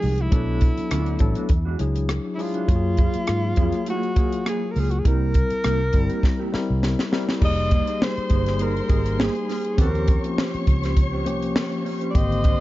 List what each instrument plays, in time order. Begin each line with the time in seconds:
Already playing: tine electric piano F3 G#3 D#4 G4 A#4, alto saxophone G#4
0.02 fingered electric bass C2, clean electric guitar G#3 D#4 G#4, open hi-hat
0.18 alto saxophone E4, muted clean electric guitar stroke, closed hi-hat
0.31 fingered electric bass B1, tine electric piano F#3 B3 D4 A4, clean electric guitar A3 D4 F#4, kick, closed hi-hat
0.61 kick, closed hi-hat
0.77 muted clean electric guitar stroke, muted fingered electric bass stroke, closed hi-hat
0.91 fingered electric bass D2, clean electric guitar A3 D4 F#4, cross-stick, closed hi-hat
1.06 closed hi-hat
1.19 fingered electric bass A1, tine electric piano F#3 B3 D4 A4, muted clean electric guitar stroke, kick, closed hi-hat
1.35 clean electric guitar A3 D4 F#4, closed hi-hat
1.49 fingered electric bass E2, muted clean electric guitar stroke, kick, closed hi-hat
1.65 clean electric guitar G#3 D4 F#4
1.79 fingered electric bass C#2, tine electric piano F#3 D4 E4 G#4, muted clean electric guitar stroke, closed hi-hat
1.95 muted clean electric guitar stroke, closed hi-hat
2.09 muted clean electric guitar stroke, cross-stick, closed hi-hat
2.25 muted clean electric guitar stroke
2.35 tine electric piano F#3, alto saxophone E4
2.39 clean electric guitar G#3 D4 G#4, tine electric piano D4 E4 G#4, alto saxophone F4, cross-stick, open hi-hat
2.54 clean electric guitar G#3 D4 F#4, closed hi-hat
2.68 fingered electric bass F#2, tine electric piano F#3 A#3 F4 F#4, kick, closed hi-hat
2.76 tine electric piano G#4
2.97 clean electric guitar A#3 F4 G#4, kick, closed hi-hat
3.14 muted fingered electric bass stroke, closed hi-hat
3.27 fingered electric bass G#2, cross-stick, closed hi-hat
3.43 muted clean electric guitar stroke
3.56 fingered electric bass F2, tine electric piano F#3 A#3 F4 G#4, clean electric guitar A#3 F4 G#4, kick, closed hi-hat
3.72 muted clean electric guitar stroke, cross-stick, closed hi-hat
3.86 clean electric guitar A#3 F4 G#4, alto saxophone F#4, closed hi-hat
4.03 muted clean electric guitar stroke, closed hi-hat
4.16 tine electric piano F#3 A#3 F4 G#4, clean electric guitar A#3 F4 G#4, kick, closed hi-hat
4.32 muted clean electric guitar stroke, closed hi-hat
4.46 clean electric guitar A#3 F4 G#4, alto saxophone G#4, cross-stick, closed hi-hat
4.62 muted clean electric guitar stroke
4.71 alto saxophone A#4
4.76 fingered electric bass C#2, clean electric guitar A#3 F4 A#4, open hi-hat
4.80 alto saxophone G#4
4.91 alto saxophone F#4, muted clean electric guitar stroke, closed hi-hat
4.99 alto saxophone G#4
5.04 fingered electric bass C2, tine electric piano G3 C4 E4 A#4, clean electric guitar A#3 E4 G4, alto saxophone A#4, kick, closed hi-hat
5.34 kick, closed hi-hat
5.50 muted fingered electric bass stroke, closed hi-hat
5.63 fingered electric bass C2, clean electric guitar A#3 E4 G4, cross-stick, closed hi-hat
5.93 fingered electric bass G1, tine electric piano G3 C4 E4 A#4, muted clean electric guitar stroke, kick, closed hi-hat
6.10 clean electric guitar A#3 E4 G4, closed hi-hat
6.23 muted clean electric guitar stroke, kick, snare
6.39 clean electric guitar A#3 E4 G4
6.52 tine electric piano G3 C4 E4 A#4, muted clean electric guitar stroke, muted fingered electric bass stroke, snare
6.68 fingered electric bass C2, muted clean electric guitar stroke
6.82 muted clean electric guitar stroke, snare
6.98 muted clean electric guitar stroke, snare
7.12 tine electric piano G3 C4 E4 A#4, clean electric guitar A#3 E4 A#4, snare
7.28 clean electric guitar A#3 E4 G4, snare
7.41 fingered electric bass F1, tine electric piano G3 A#3 D#4 G#4, string section C5 C6, kick, crash
7.45 alto saxophone D#5
7.71 clean electric guitar A#3 D#4 G#4, kick, closed hi-hat
7.87 tine electric piano A#3 D#4 G4 G#4, closed hi-hat
8.01 alto saxophone C5, muted clean electric guitar stroke, snare
8.16 muted clean electric guitar stroke, muted fingered electric bass stroke, closed hi-hat
8.29 fingered electric bass G1, clean electric guitar A#3 D#4 G#4, kick, closed hi-hat
8.46 tine electric piano G3 A#3 D#4 G#4, snare, closed hi-hat
8.59 clean electric guitar A#3 D#4 G#4, alto saxophone A#4, closed hi-hat
8.76 muted clean electric guitar stroke, closed hi-hat
8.89 fingered electric bass G#1, clean electric guitar A#3 D#4 G#4, tine electric piano A#3 D#4 G4 G#4, kick, closed hi-hat
9.06 muted clean electric guitar stroke, closed hi-hat
9.18 clean electric guitar A#3 D#4 G#4, snare
9.22 alto saxophone G#4
9.34 muted clean electric guitar stroke, closed hi-hat
9.48 clean electric guitar A#3 D#4 A#4, snare, open hi-hat
9.64 muted clean electric guitar stroke, closed hi-hat
9.77 fingered electric bass D#2, tine electric piano F3 C4 C#4 G4, clean electric guitar C4 F#4 B4, alto saxophone A#4, string section C#5 C#6, kick, closed hi-hat
9.89 clean electric guitar C#4 G4 C5
9.95 closed hi-hat
10.08 kick, closed hi-hat
10.23 tine electric piano F3 A#3 C#4 F4, muted clean electric guitar stroke, closed hi-hat
10.37 clean electric guitar C#4 G4 C5, snare
10.54 muted fingered electric bass stroke, closed hi-hat
10.66 fingered electric bass C#2, muted clean electric guitar stroke, kick, closed hi-hat
10.82 clean electric guitar C#4 G4 C5, snare, closed hi-hat
10.97 kick, closed hi-hat
11.12 clean electric guitar C#4 G4 C5
11.25 fingered electric bass C2, tine electric piano F3 A#3 C#4 G4, muted clean electric guitar stroke, closed hi-hat
11.42 muted clean electric guitar stroke, closed hi-hat
11.56 snare
11.71 muted clean electric guitar stroke, closed hi-hat
11.84 clean electric guitar C#4 G4 C#5, open hi-hat
12.00 clean electric guitar C#4 G4 C5, closed hi-hat
12.10 tine electric piano D3, alto saxophone D5
12.14 fingered electric bass G#1, tine electric piano A#3 C4 G4, string section C5 C6, alto saxophone D#5, kick, closed hi-hat
12.32 closed hi-hat
12.43 clean electric guitar D4 G4 C5, kick, closed hi-hat